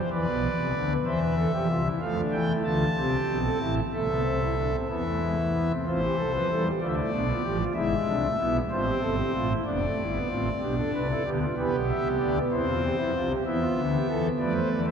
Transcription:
0.12 E2 E3 B4 D5
0.27 B1 B2
0.59 C2 C3
0.75 D2 D3
1.05 E2 E3 C5 E5
1.22 B4
1.38 A4
1.54 F2 F3 G4
1.68 C2 C3 F4
1.85 E4
2.01 F2 F3 A3 F4 F5
2.16 D4
2.32 E2 E3 G5
2.49 E4
2.64 D2 D3 F4 A5
2.97 C2 C3 C4 G4
3.29 B1 B2
3.44 A4
3.60 A1 A2 E4
3.93 C2 C3 A3 A4 E5
4.09 B3
4.24 C4
4.41 E4
4.57 D4
4.73 C4
4.89 E2 E3 B3 E4 E5
5.05 A3
5.21 G#3
5.37 A3
5.53 B3
5.69 C4
5.86 A1 A2 C4 F4 C5
6.02 E3 G4
6.18 C2 C3 A4
6.34 F3 B4
6.50 E2 E3 G3 A4
6.66 G4
6.81 D2 D3 A3 F4 D5
6.88 E5
6.95 E4 D5
7.12 B1 B2 D4
7.27 B3 F4
7.43 A1 A2 F3 G4
7.59 F4
7.74 G#1 G#2 G#3 E4 E5
8.07 C2 C3 D4
8.23 A3
8.39 B1 B2 B3 E4
8.71 A1 A2 C4 F4 C5
8.85 G4
9.01 G1 G2 A4
9.18 G4
9.34 A1 A2 F4
9.50 E4
9.66 F1 F2 B3 D4 D5
9.82 A3
9.99 G1 G2 E4
10.14 B3
10.29 A1 A2 C4 F4
10.61 B1 B2 D4 G4
10.77 A4
10.93 C2 C3 B4
11.09 E4 A4
11.25 D2 D3 B3 G4
11.41 F4
11.57 E2 E3 B3 G4 B4
11.73 B1 B2
11.88 E5
12.04 C2 C3
12.19 D2 D3 D5
12.51 E2 E3 C4 E4 C5
12.67 F4
12.83 G4
12.98 F2 F3 E4
13.15 C2 C3 F4
13.30 G4
13.46 E2 E3 B3 E4 E5
13.61 F4
13.77 D2 D3
13.93 G4
14.09 E2 E3 A4
14.39 F2 F3 A3 B4 D5
14.54 C5
14.72 E2 E3 D5
14.87 C5 E5

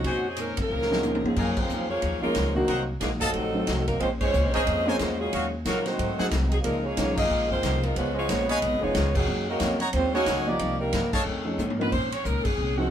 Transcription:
Already playing: F#4
0.03 F2 A#2 D#3 G#3 C#4 C5 C#5 D#5 G#5, kick, ride
0.28 G#4
0.36 A#2 D#3 G#3 C#4, hi-hat pedal, ride
0.41 A#4
0.57 F2 C#3 F3 A#3 A#4, kick, ride
0.70 C#2 A#2 D#3 G#3 C#4
0.82 snare
0.91 F3 C4 C#4 D#4 G#4, snare
1.02 A#2 D#3 G#3 C#4, hi-hat pedal, high tom
1.15 high tom
1.24 G2 C#3 F3 G#3 C4 C#4 G#4, high tom
1.35 F#2 C#3 F3 G#3 A#3 C#4 D#4 F4 A#4 D#5 F5 G#5, kick, crash
1.57 C#3 F3 A#3 C4 F4 G#4 C5, kick, crash
1.69 F2 F#2 F3 A#3 D#4, hi-hat pedal
1.89 F3 A#3 C#4 F4 G#4 C#5
2.02 D#2 F#2 F3 A#3 D#4, kick, ride
2.21 C#3 F3 G#3 A#3 C#4 D#4 F4 G#4 A#4, muted upright bass stroke
2.35 C#2 F#2 F3 A#3 D#4, kick, snare, hi-hat pedal, ride
2.55 A#2 D#3 F#3 A#3 C4 D4 F#4
2.68 C2 C3 F#3 A#3 D#4 A#4 C5 D#5 F#5, kick, ride
3.01 A#1 C3 F3 F#3 G#3 A#3 D4 D#4 G#4, kick, snare, hi-hat pedal, ride
3.20 C3 D#3 F#3 A3 C4 D#4 A4 D#5 F5 A5, kick, ride
3.33 A1 F3 A3 D#4, kick, ride
3.38 F#4
3.54 F#3 A3 C4 D#4 F4
3.67 C2 F3 A3 D#4 F#4, kick, snare, hi-hat pedal, ride
3.86 F#3 A#3 C4 D#4 A#4, kick, ride
3.99 A#1 F3 G#3 A#3 C4 C#4 F4 C5, kick, ride
4.04 G#4 C5
4.20 F3 G#3 C#4 F4 C5 C#5, kick, crash
4.33 C#2 A#3 C#4 G#4 C5, hi-hat pedal
4.45 A#1
4.52 F3 G#3 C#4 D#4 G#4 A#4 C5 C#5 D#5 G#5, ride
4.56 G#1
4.67 F2 A#3 C#4 G#4 C5, kick, ride
4.85 F3 G#3 A#3 C4 C#4 F4 A#4 C5 C#5 G#5
4.99 E2 A#3 C#4 G#4 C5, kick, snare, hi-hat pedal, ride
5.18 A#2 C#3 F#3 G#3 C#4 F4 G#4
5.32 D#2 D#3 F#3 C#4 F4 F#4 C#5 D#5 F5, kick, ride
5.64 A#2 C#3 D#3 F#3 A#3 C#4 F4 F#4 A#4 C#5 D#5 F5, kick, snare, hi-hat pedal, ride
5.83 D#3 F#3 A3 C4 D#4 F#4 C5, snare, ride
5.97 G#2 F#3 A3 C4, kick, ride
6.18 F#3 A3 C4 D#4 G#4 A4 C5 F#5, muted upright bass stroke, snare
6.30 C2 G#2 F#3 A3 C4, kick, snare, hi-hat pedal, ride
6.47 C3 D#3 G#3
6.52 F#3 C4 D#4 G#4, ride
6.60 A#2 C#3 F3 A#3
6.64 C#2 F3 G#3 A#3 D#4 F4 A#4, kick, ride
6.81 G#3 A#3 C#4
6.86 A#3 F4 G#4 C#5
6.97 B1 C#3 F3 G#3 A#3 C#4 D#4 F4, kick, snare, hi-hat pedal, ride
7.14 G#3 A#3 D#4, kick, crash
7.19 A#3 F4 G#4 D#5
7.29 A#1 C#3 F3 A#3 D#4
7.46 F3 G#3 C4
7.51 A#3 F4 G#4 C5, kick
7.63 C2 C#3 F3 A#3 D#4, kick, snare, hi-hat pedal, ride
7.81 A#2 F3 G#3 A#3 D#4 F4 A#4, ride
7.95 C#2 C#3 F3 G#3 B3 C#4 F4 B4, kick, ride
7.99 B3 F4
8.13 F3 G#3 C#4
8.18 B3 F4 G#4 C#5
8.29 A#1 C#3 G#3 B3 F4, kick, snare, hi-hat pedal, ride
8.46 G#3 B3 C#4 D#4 G#4 B4 C#5 D#5 G#5, ride
8.50 B4 F5
8.62 B1 C#3 G#3 B3 F4, kick, ride
8.73 G#1
8.81 F1 F3 G#3 B3 C#4 D#4 F4 G#4 C#5
8.95 C#2 C#3 G#3 B3 F4, kick, snare, hi-hat pedal, ride
9.13 C#3 D#3 F#3 G#3 C#4 D#4 G#4, kick, crash
9.27 F#2 D#3 A#3 C#4
9.47 C#3 D#3 F#3 A#3 C#4 D#4 A#4
9.60 F2 F#2 D#3 A#3 C#4, kick, snare, hi-hat pedal, ride
9.80 C#5 D#5 F#5 A#5, ride
9.92 D#2 F#2 D#3 G#3 A#3 C4 C#4 F4 C5, kick, ride
10.13 D#3 G#3 A#3 C#4 D#4 F#4 C#5 D#5 F#5 G#5
10.26 C#2 F#2 D#3 A#3 C#4, kick, snare, hi-hat pedal, ride
10.47 F3 G3 A#3 D#4 F4 G4 D5
10.58 C2 C3 F3 A#3 D#4, kick, ride
10.80 D#3 G3 A#3 D4 D#4 A#4
10.93 G2 C3 F3 A#3 D#4, kick, snare, hi-hat pedal, ride
11.13 C#3 D#3 A3 C#4 G#4 A4 C#5 D#5 F5 A5, kick, crash
11.25 F2 D#3 A3 C#4
11.45 F3 A3 C#4 D#4 G#4
11.58 F2 G#2 D#3 A3 C#4, hi-hat pedal, high tom
11.70 high tom
11.79 A#2 F3 C4 C#4 D#4 A#4 B4, high tom
11.91 F2 A#2 G#3 C#4 D#4 C5, kick, crash
12.12 C#5, ride
12.25 C#2 A#2 G#3 C#4 D#4 A#4, kick, hi-hat pedal
12.44 G#4, muted upright bass stroke, kick, crash
12.58 C2 A#2 G#3 C#4 D#4
12.77 F3 C4 C#4 D#4 F#4 G#4

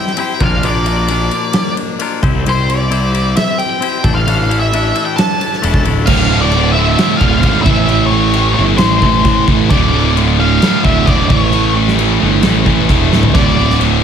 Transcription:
Already playing: G3 C4 E4 G4 C5 G5
0.07 snare
0.17 C4 E4 G4 C5 G5, ride
0.40 A#1 A#2 F3 A#3 D4 F4 A#4 F5, kick, ride
0.63 A#2 F3 A#3 D4 F4 A#4 D5, ride
0.86 A#3 D4 F4 A#4 D5, ride
1.08 A#2 F3 A#3 D4 F4 A#4, ride
1.31 A#3 D4 F4 A#4, ride
1.53 snare, ride
1.77 ride
1.99 A#3 D4 F4 A#4, ride
2.23 C2 C3 G3 C4 E4 G4 C5, kick, ride
2.45 C2 C3 G3 C4 E4 G4 C5, ride
2.49 C5
2.68 C4 E4 G4 C5 D5, ride
2.89 C3 G3 C4 E4 G4 C5, ride
3.12 C4 E4 G4 C5, ride
3.36 E5, snare, ride
3.58 G5, ride
3.70 G5
3.80 C4 E4 G4 C5, ride
4.04 A1 A2 E3 A3 D4 A4, kick, ride
4.15 F5
4.26 A2 E3 A3 D4 A4, ride
4.49 A3 D4 E4 A4, ride
4.60 E5
4.72 A2 E3 A3 D4 E4 A4, ride
4.94 A3 D4 E4 A4, ride
5.05 G5
5.16 A5, snare, ride
5.41 ride
5.53 snare
5.62 E1 A3 D4 E4 A4, ride
5.74 kick
5.84 D1 A3 D4 E4 A4, ride
6.06 D1 D2 A2 F5, kick, crash
6.11 D3
6.31 D2 A2 D3
6.41 D5
6.51 D2 A2, crash
6.56 D3
6.72 D2 A2 D3 E5
6.98 D2 A2 D3, snare, crash
7.17 D2 A2 D3 F5, kick
7.22 D1
7.42 G#1 D2 A2 D3, kick, crash
7.62 A1 A2 E3 A3 E5, kick
7.86 A2 E3 A3, crash
8.07 C#5
8.11 A2 E3 A3
8.33 A2 E3 A3, crash
8.54 A2 E3 A3 C#5
8.59 G1
8.77 A1 A2 E3 A3 C5, snare, crash
9.02 A1 A2 E3 A3, kick
9.25 A2 E3 A3, kick, crash
9.48 A1 A2 E3 A3, kick
9.70 D1 D2 A2 D3 D5, kick, crash
9.93 D2 A2 D3
10.15 D2 A2 D3, crash
10.39 D2 A2 D3 F5
10.62 D2 A2 D3, snare, crash
10.84 D1 D2 A2 D3 E5, kick
11.06 E1 D2 A2 D3 D5, kick, crash
11.29 A1 A2 E3 A3 C#5, kick
11.51 A2 E3 A3, crash
11.73 A2 E3 A3
11.88 snare
11.95 A2 E3 A3
11.99 A2 E3 A3, crash
12.20 G1 A2 E3 A3
12.42 A1 A2 E3 A3, snare, crash
12.64 A1 A2 E3 A3, kick
12.88 E1 A2 E3 A3, kick, crash
13.11 D1 A2 E3 A3, snare
13.23 floor tom
13.34 D1 D2 A2 D3 D5, kick, crash
13.57 D2 A2 D3
13.70 snare
13.79 D2 A2 D3, crash

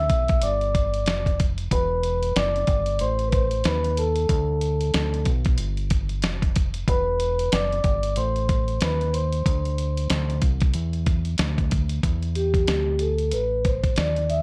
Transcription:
Already playing: E5 E6
0.10 B1, kick, closed hi-hat
0.28 kick, closed hi-hat
0.42 G1 D5 D6, closed hi-hat
0.61 closed hi-hat
0.75 kick, closed hi-hat
0.94 closed hi-hat
1.06 F1, snare, closed hi-hat
1.26 kick, closed hi-hat
1.40 kick, closed hi-hat
1.58 closed hi-hat
1.71 E1 B4 B5, kick, closed hi-hat
2.03 closed hi-hat
2.23 closed hi-hat
2.36 F#1 D5 D6, snare, closed hi-hat
2.56 closed hi-hat
2.67 G1, kick, closed hi-hat
2.86 closed hi-hat
2.99 A1 C5 C6, closed hi-hat
3.19 closed hi-hat
3.27 B4
3.32 C5 C6, kick, closed hi-hat
3.51 closed hi-hat
3.64 D#2 B4 B5, snare, closed hi-hat
3.84 closed hi-hat
3.97 A4 A5, closed hi-hat
4.16 closed hi-hat
4.29 D2, kick, closed hi-hat
4.61 closed hi-hat
4.81 closed hi-hat
4.94 D2, snare, closed hi-hat
5.14 closed hi-hat
5.25 B1, kick, closed hi-hat
5.45 kick, closed hi-hat
5.58 G1, closed hi-hat
5.77 closed hi-hat
5.90 kick, closed hi-hat
6.09 closed hi-hat
6.22 F1, snare, closed hi-hat
6.42 kick, closed hi-hat
6.56 kick, closed hi-hat
6.74 closed hi-hat
6.88 E1 B4 B5, kick, closed hi-hat
7.20 closed hi-hat
7.39 closed hi-hat
7.52 F#1 D5 D6, snare, closed hi-hat
7.72 closed hi-hat
7.84 G1, kick, closed hi-hat
8.03 closed hi-hat
8.16 A1 C5 C6, closed hi-hat
8.36 closed hi-hat
8.49 kick, closed hi-hat
8.68 closed hi-hat
8.81 D#2 B4 B5, snare, closed hi-hat
9.01 closed hi-hat
9.13 C5 C6, closed hi-hat
9.32 closed hi-hat
9.46 D2, kick, closed hi-hat
9.65 closed hi-hat
9.78 closed hi-hat
9.97 closed hi-hat
10.10 D2, snare, closed hi-hat
10.30 closed hi-hat
10.42 C2, kick, closed hi-hat
10.61 kick, closed hi-hat
10.74 E2, closed hi-hat
10.93 closed hi-hat
11.06 kick, closed hi-hat
11.25 closed hi-hat
11.38 D2, snare, closed hi-hat
11.58 kick, closed hi-hat
11.71 kick, closed hi-hat
11.89 closed hi-hat
12.03 E2, kick, closed hi-hat
12.23 closed hi-hat
12.35 G4, closed hi-hat
12.54 kick, closed hi-hat
12.67 D2, snare, closed hi-hat
12.99 A4, closed hi-hat
13.18 closed hi-hat
13.31 A1 B4, closed hi-hat
13.65 C5, kick, closed hi-hat
13.84 kick, closed hi-hat
13.96 D#2 D5, snare, closed hi-hat
14.16 closed hi-hat
14.30 E5, closed hi-hat

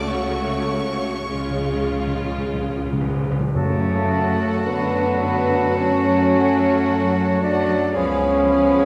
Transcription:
Already playing: C#2 C#3 A3 F#4
0.09 C#5 C#6
1.27 C#2 C#3 G#3 F4
1.35 C#3
1.51 C#3
1.59 C#3
1.67 C#3
1.83 C#3
1.92 C#3
1.99 C#3
2.07 C#3
2.15 C#3
2.23 C#3
2.31 C#3
2.38 C#3
2.45 C#3
2.53 C#3
2.61 C#3
2.69 C#3
2.77 C#3
2.85 C#3
2.93 C#3
3.01 C#3
3.08 C#3
3.16 C#3
3.24 C#3
3.32 C#3
3.39 C#3
3.47 C#3
3.54 F#2 C#3 F#3 A3 F#4 A4 A5
4.11 F#4 A4 F#5
4.66 F#2 D3 B3 B4
5.21 F#4 A4 F#5
5.77 F#2 F#3 C#4 C#5
6.32 F#4 A4 F#5
6.87 F#2
7.41 F#3 D4 F#4 A4 D5 F#5
7.94 C#2 F3 B3 C#4 G#4 B4 C#5 F5 B5
8.48 G#4 B4 F5

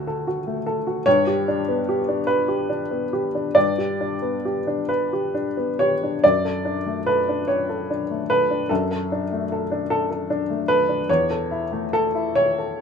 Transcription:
Already playing: D2 A3 F#4 A4
0.07 A4
0.27 F#4
0.47 A3
0.66 A4
0.87 F#4
1.06 G2 C#5
1.27 G4
1.48 D4
1.68 B3
1.89 G4
2.08 D4
2.27 B4
2.48 G4
2.69 D4
2.91 B3
3.13 G4
3.35 D4
3.55 G2 D5
3.78 G4
4.01 D4
4.22 B3
4.45 G4
4.67 D4
4.89 B4
5.13 G4
5.34 D4
5.57 B3
5.79 G4 C#5
6.03 D4
6.24 F#2 D5
6.45 A4
6.65 D4
6.86 A3
7.06 A4 B4
7.29 D4
7.48 C#5
7.69 A4
7.90 D4
8.11 A3
8.30 A4 B4
8.51 D4
8.69 F#2 A4
8.91 A4
9.12 D4
9.32 A3
9.52 A4
9.72 D4
9.90 A4
10.11 A4
10.30 D4
10.50 A3
10.68 A4 B4
10.89 D4
11.09 E2 C#5
11.30 A4
11.51 E4
11.72 A3
11.93 A4
12.15 E4
12.35 C#5
12.58 A4

